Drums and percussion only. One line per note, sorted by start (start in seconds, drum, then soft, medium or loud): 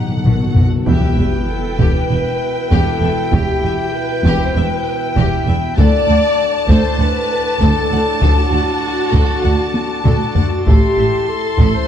0.26 taiko low-mid medium
0.56 taiko low medium
0.87 taiko medium
1.79 taiko medium
2.72 taiko medium
3.33 taiko medium
4.25 taiko medium
5.18 taiko medium
5.78 taiko medium
6.69 taiko medium
7.62 taiko medium
8.22 taiko medium
9.13 taiko medium
9.74 taiko high medium
10.05 taiko low-mid medium
10.35 taiko low medium
10.67 taiko medium
11.58 taiko medium